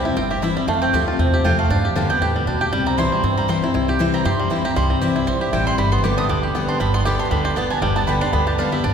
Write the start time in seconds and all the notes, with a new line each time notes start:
Already playing: C3 E3 G3 C4 E4 G4
0.05 E4
0.17 G1 G2 C4 G5
0.31 G4 E5
0.42 E3 G3 C4 E4 E5
0.56 G3 C4 E4
0.67 F2 A3 F5
0.82 C4 G5
0.93 D2 F3 A3 C4 F4 G4
1.08 F4
1.19 E2 C3 C4
1.34 G4
1.44 F2 F3 A3 C4 F4 G5
1.59 A3 F5
1.70 G2 D4 F5
1.85 G4
1.96 F2 D3 G3 B3 D4 G4 F5
2.10 B3 G4 G5
2.21 E2 A2 G4
2.36 G3
2.47 D2 B2 D4
2.61 G4 G5
2.73 C2 C3 G3
2.86 C4 A#5
2.98 E3 G3 C4 E4 C6
3.12 G3
3.23 G2 C4
3.38 G3 A#5
3.48 E3 G3 C4 E4 C6
3.62 C4 E4
3.74 C2 C3 E4
3.88 G4 G5
3.99 E3 G3 C4 E4
4.14 C4 A#5
4.25 G2 G4 C6
4.39 G3
4.50 E3 G3 C4 E4
4.64 C4 E4 G4 A#5
4.76 C2 C3 G3 C6
4.90 C4
5.01 E3 G3 C4 E4 G4
5.16 E4
5.27 B1 G2 C4 C6
5.41 G4 E5
5.53 A1 E3 G3 C4 E4 G5
5.67 G3 C6
5.78 G1 G2 G3 B5
5.92 B3 C6
6.04 D3 G3 B3 G4 D6
6.18 D4 D#6
6.29 D2 D3 G3 D6
6.43 G4
6.55 D3 G3 B3 G4
6.68 D4 C6
6.80 G1 G2 G3 B5
6.94 B3 C6
7.05 D3 G3 B3 G4 D6
7.19 B3 D4 G4 C6
7.31 D2 D3 G3 B5
7.45 G4 C6
7.56 D3 G3 B3 G4 A5
7.70 B3 D4 G4 G#5
7.82 G1 G2 G3 G5
7.96 B3 A5
8.07 D3 G3 B3 G4 B5
8.21 B3 D4 G4 C6
8.33 D2 D3 B3 B5
8.47 G4 A5
8.58 D3 G3 B3 D4 G4 F5
8.72 G3 B3 G4 E5
8.84 G1 G2 D4 D5